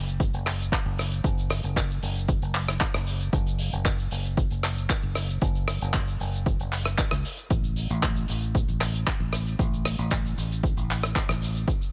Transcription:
Already playing: fingered electric bass F#1
0.08 closed hi-hat, shaker
0.20 kick, closed hi-hat, shaker
0.34 fingered electric bass F#1, closed hi-hat, shaker
0.46 cross-stick, clap, open hi-hat, shaker
0.60 closed hi-hat, shaker
0.72 kick, clap, closed hi-hat, shaker
0.86 fingered electric bass F#1
0.99 cross-stick, open hi-hat, shaker
1.12 closed hi-hat, shaker
1.24 fingered electric bass F#1, kick, closed hi-hat, shaker
1.38 closed hi-hat, shaker
1.50 cross-stick, open hi-hat, shaker
1.64 fingered electric bass F#1, closed hi-hat, shaker
1.76 kick, clap, closed hi-hat, shaker
1.91 closed hi-hat, shaker
2.03 fingered electric bass F#1, open hi-hat, shaker
2.16 closed hi-hat, shaker
2.28 kick, closed hi-hat, shaker
2.42 fingered electric bass F#1, closed hi-hat, shaker
2.55 clap, open hi-hat, shaker
2.68 cross-stick, closed hi-hat, shaker
2.81 kick, clap, closed hi-hat, shaker
2.94 fingered electric bass F#1, cross-stick
3.07 open hi-hat, shaker
3.20 closed hi-hat, shaker
3.33 fingered electric bass F#1, kick, closed hi-hat, shaker
3.47 closed hi-hat, shaker
3.59 open hi-hat, shaker
3.73 fingered electric bass F#1, closed hi-hat, shaker
3.85 kick, clap, closed hi-hat, shaker
3.99 closed hi-hat, shaker
4.11 fingered electric bass F#1, open hi-hat, shaker
4.24 closed hi-hat, shaker
4.37 kick, closed hi-hat, shaker
4.51 fingered electric bass F#1, closed hi-hat, shaker
4.63 cross-stick, clap, open hi-hat, shaker
4.77 closed hi-hat, shaker
4.90 kick, clap, closed hi-hat, shaker
5.03 fingered electric bass F#1
5.15 cross-stick, open hi-hat, shaker
5.28 closed hi-hat, shaker
5.41 fingered electric bass F#1, kick, closed hi-hat, shaker
5.55 closed hi-hat, shaker
5.68 cross-stick, open hi-hat, shaker
5.82 fingered electric bass F#1, closed hi-hat, shaker
5.94 kick, clap, closed hi-hat, shaker
6.07 closed hi-hat, shaker
6.20 fingered electric bass F#1, open hi-hat, shaker
6.34 closed hi-hat, shaker
6.46 kick, closed hi-hat, shaker
6.60 fingered electric bass F#1, closed hi-hat, shaker
6.73 clap, open hi-hat, shaker
6.85 cross-stick, closed hi-hat, shaker
6.98 kick, clap, closed hi-hat, shaker
7.11 fingered electric bass C#2, cross-stick
7.25 open hi-hat, shaker
7.37 closed hi-hat, shaker
7.50 fingered electric bass A1, kick, closed hi-hat, shaker
7.64 closed hi-hat, shaker
7.76 open hi-hat, shaker
7.90 fingered electric bass A1, closed hi-hat, shaker
8.03 kick, clap, closed hi-hat, shaker
8.16 closed hi-hat, shaker
8.28 fingered electric bass A1, open hi-hat, shaker
8.42 closed hi-hat, shaker
8.55 kick, closed hi-hat, shaker
8.68 fingered electric bass A1, closed hi-hat, shaker
8.81 cross-stick, clap, open hi-hat, shaker
8.95 closed hi-hat, shaker
9.06 kick, clap, closed hi-hat, shaker
9.20 fingered electric bass A1
9.33 cross-stick, open hi-hat, shaker
9.47 closed hi-hat, shaker
9.59 fingered electric bass A1, kick, closed hi-hat, shaker
9.74 closed hi-hat, shaker
9.85 cross-stick, open hi-hat, shaker
9.98 fingered electric bass A1, closed hi-hat, shaker
10.11 kick, clap, closed hi-hat, shaker
10.26 closed hi-hat, shaker
10.38 fingered electric bass A1, open hi-hat, shaker
10.52 closed hi-hat, shaker
10.63 kick, closed hi-hat, shaker
10.77 fingered electric bass A1, closed hi-hat, shaker
10.90 clap, open hi-hat, shaker
11.03 cross-stick, closed hi-hat, shaker
11.16 kick, clap, closed hi-hat, shaker
11.29 fingered electric bass A1, cross-stick
11.42 open hi-hat, shaker
11.55 closed hi-hat, shaker
11.68 kick, closed hi-hat, shaker
11.82 closed hi-hat, shaker

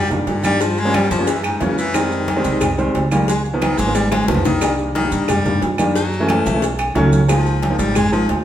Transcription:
Already playing: upright bass G2, baritone saxophone G3
0.10 baritone saxophone A#2, grand piano D#3 G3 A#3 D4, high conga, low conga, maracas
0.27 upright bass G2, baritone saxophone D3, cowbell, high conga, low timbale, low agogo, maracas
0.43 grand piano D#3 G3 A#3 D4, baritone saxophone G3, high conga, low agogo, claves, maracas
0.61 baritone saxophone F3, cowbell, high conga, maracas
0.77 baritone saxophone G#3, high conga, maracas
0.85 grand piano F3 G3 A#3 C#4
0.94 baritone saxophone G3, cowbell, high conga, low timbale, low agogo, claves, maracas
1.11 upright bass F#2, baritone saxophone F3, high conga, maracas
1.19 grand piano F3 G3 A#3 C#4
1.27 baritone saxophone E3, cowbell, high conga, low agogo, maracas
1.44 baritone saxophone G#2, cowbell, high conga, low agogo, claves, maracas
1.60 upright bass F2, baritone saxophone C#3, grand piano E3 G#3 A#3 C#4, cowbell, high conga, low timbale, low agogo, maracas
1.78 baritone saxophone E3, maracas
1.94 grand piano D#3 G3 G#3 C4, baritone saxophone D#3, cowbell, high conga, low agogo, claves, maracas
2.11 high conga, maracas
2.28 cowbell, high conga, low timbale, low agogo, maracas
2.36 grand piano D#3 G3 G#3 C4
2.44 upright bass C2, cowbell, high conga, maracas
2.61 cowbell, high conga, low conga, low agogo, claves, maracas
2.78 grand piano D#3 G3 G#3 C4, high conga, maracas
2.95 upright bass C#2, cowbell, high conga, low timbale, low agogo, maracas
3.12 grand piano D#3 G3 G#3 A#3, high conga, low agogo, claves, maracas
3.28 baritone saxophone G#3, cowbell, high conga, maracas
3.45 baritone saxophone B2, high conga, maracas
3.53 grand piano D#3 F3 A#3 B3
3.62 baritone saxophone D#3, cowbell, high conga, low timbale, low agogo, claves, maracas
3.78 upright bass G#1, baritone saxophone G#3, high conga, maracas
3.87 grand piano D#3 F3 A#3 B3
3.95 baritone saxophone G3, cowbell, high conga, low agogo, maracas
4.12 baritone saxophone G#3, cowbell, high bongo, high conga, low agogo, claves, maracas
4.23 high conga
4.28 upright bass C2, grand piano D#3 F3 A#3 B3, baritone saxophone F3, cowbell, high bongo, low timbale, low agogo, maracas
4.35 low conga
4.45 baritone saxophone D#3, low bongo, low conga, maracas
4.61 grand piano D#3 G3 A#3 D4, cowbell, high conga, low agogo, claves, maracas
4.78 high conga, maracas
4.95 baritone saxophone D#3, cowbell, high conga, low timbale, low agogo, maracas
5.04 grand piano D#3 G3 A#3 D4
5.11 upright bass G2, cowbell, high conga, maracas
5.28 baritone saxophone G3, cowbell, high conga, low conga, low agogo, claves, maracas
5.45 grand piano D#3 G3 A#3 D4, high conga, low conga, maracas
5.62 upright bass F#2, cowbell, high conga, low timbale, low agogo, maracas
5.78 grand piano D#3 G3 A#3 D4, high conga, low agogo, claves, maracas
5.95 baritone saxophone F#3, cowbell, high conga, maracas
6.13 high conga, maracas
6.20 grand piano E3 G#3 A3 C#4
6.28 baritone saxophone A3, cowbell, high conga, low timbale, low agogo, claves, maracas
6.46 upright bass B1, high conga, maracas
6.54 grand piano E3 G#3 A3 C#4
6.62 cowbell, high conga, low agogo, maracas
6.79 cowbell, high conga, low agogo, claves, maracas
6.95 upright bass C#2, grand piano D#3 F#3 A3 C#4, cowbell, high conga, low timbale, low agogo, maracas
7.13 high conga, maracas
7.28 grand piano F3 G#3 A#3 D#4, baritone saxophone F3, cowbell, high conga, low agogo, claves, maracas
7.46 high conga, maracas
7.63 cowbell, high conga, low timbale, low agogo, maracas
7.70 grand piano F3 G#3 A#3 D#4
7.79 upright bass G#1, baritone saxophone G3, cowbell, high conga, maracas
7.95 baritone saxophone G#3, cowbell, high conga, low conga, low agogo, claves, maracas
8.12 grand piano F3 G#3 A#3 D#4, baritone saxophone F3, high conga, maracas
8.29 upright bass D2, cowbell, high conga, low timbale, low agogo, maracas

